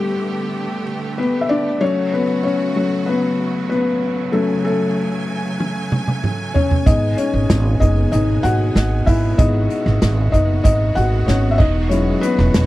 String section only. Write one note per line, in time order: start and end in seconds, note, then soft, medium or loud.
0.00 1.77 D3 medium
0.00 6.83 A3 medium
0.00 1.77 B3 medium
0.00 1.77 G4 medium
1.81 6.83 C#3 medium
1.81 6.83 F#3 medium
1.81 4.31 F#4 medium
4.34 9.35 G#5 medium
6.86 11.56 B2 medium
6.86 12.66 G#3 medium
6.86 12.66 B3 medium
9.39 12.66 F#4 medium
11.59 12.66 E3 medium